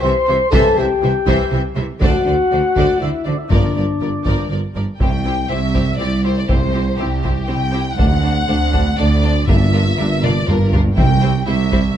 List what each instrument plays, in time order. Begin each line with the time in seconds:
0.01 double bass section C2, tuba C2, cello section C3, viola section E3, violin section C5 E5, french horn section C5, trumpet section C6
0.26 tuba C2, double bass section C2, cello section C3, viola section E3, violin section C5 E5
0.51 tuba C2, double bass section C2, cello section C3, viola section E3, french horn section A4, violin section C5 E5, trumpet section A5, taiko
0.77 tuba C2, double bass section C2, cello section C3, viola section E3, french horn section G4, violin section C5 E5, trumpet section G5
1.02 double bass section C2, tuba C2, cello section C3, viola section E3, violin section C5 E5
1.26 double bass section C2, tuba C2, cello section C3, viola section E3, violin section C5 E5, taiko
1.52 tuba C2, double bass section C2, cello section C3, viola section E3, violin section C5 E5
1.76 tuba C2, double bass section C2, cello section C3, viola section E3, violin section C5 E5
2.01 tuba D2, double bass section D2, cello section D3, viola section A3, french horn section F#4, violin section C5 D5, trumpet section F#5, taiko
2.26 tuba D2, double bass section D2, cello section D3, viola section A3, violin section C5 D5
2.52 double bass section D2, tuba D2, cello section D3, viola section A3, violin section C5 D5
2.76 double bass section D2, tuba D2, cello section D3, viola section A3, violin section C5 D5, taiko
3.00 tuba D2, double bass section D2, cello section D3, viola section A3, french horn section E4, violin section C5 D5, trumpet section E5
3.25 tuba D2, double bass section D2, cello section D3, viola section A3, french horn section D4, violin section C5 D5, trumpet section D5
3.38 french horn section E4, trumpet section E5
3.50 tuba G1, double bass section G1, timpani G2, cello section G2, viola section F3, french horn section D4, violin section A#4 D5, trumpet section D5, taiko
3.75 tuba G1, double bass section G1, cello section G2, viola section F3, violin section A#4 D5
4.01 tuba G1, double bass section G1, cello section G2, viola section F3, violin section A#4 D5
4.25 tuba G1, double bass section G1, cello section G2, viola section F3, violin section A#4 D5, taiko
4.50 tuba G1, double bass section G1, cello section G2, viola section F3, violin section A#4 D5
4.75 tuba G1, double bass section G1, cello section G2, viola section F3, violin section A#4 D5
5.00 tuba C2, double bass section C2, cello section C2, french horn section C4 E4, viola section C4 E4, violin section G4 C5 G5, taiko
5.25 viola section C4 E4, violin section G4 C5
5.49 tuba C2, double bass section C2, cello section C2, viola section C4 E4, violin section G4 C5 E5
5.74 viola section C4 E4, violin section G4 C5, taiko
5.99 tuba C2, double bass section C2, cello section C2, viola section C4 E4, violin section G4 C5 D5
6.24 viola section C4 E4, violin section G4 C5
6.38 violin section D5
6.48 tuba C2, cello section C2, double bass section C2, viola section C4 E4, violin section G4 C5, taiko
6.73 viola section C4 E4, violin section G4 C5
6.97 tuba C2, cello section C2, double bass section C2, viola section C4 E4, violin section G4 C5
7.23 viola section C4 E4, violin section G4 C5, taiko
7.47 tuba C2, double bass section C2, cello section C2, viola section C4 E4, violin section G4 C5 G5
7.72 viola section C4 E4, violin section G4 C5
7.97 tuba D2, cello section D2, double bass section D2, viola section A3 D4, french horn section C4 D4, violin section D4 C5 F#5, taiko
8.23 viola section A3 D4, violin section D4 C5
8.48 cello section D2, tuba D2, double bass section D2, viola section A3 D4, violin section D4 C5
8.72 viola section A3 D4, violin section D4 C5, taiko
8.97 tuba D2, cello section D2, double bass section D2, viola section A3 D4, violin section D4 C5 D5
9.23 viola section A3 D4, violin section D4 C5
9.47 tuba G1, double bass section G1, timpani G2, cello section G2, viola section G3 D4, french horn section A#3 F4, violin section F4 A#4 E5, taiko
9.73 viola section G3 D4, violin section F4 A#4
9.97 tuba G1, double bass section G1, cello section G2, viola section G3 D4, violin section F4 A#4
10.22 viola section G3 D4, violin section F4 A#4 D5, taiko mid
10.47 tuba G1, double bass section G1, cello section G2, viola section G3 D4, violin section F4 A#4, taiko low-mid
10.73 viola section G3 D4, violin section F4 A#4, taiko low
10.96 cello section C2, tuba C2, double bass section C2, timpani C3, viola section G3 C4, french horn section C4 E4, violin section E4 C5 G5, taiko
11.22 viola section G3 C4, violin section E4 C5
11.46 cello section C2, tuba C2, double bass section C2, viola section G3 C4, violin section E4 C5 E5
11.72 viola section G3 C4, violin section E4 C5, taiko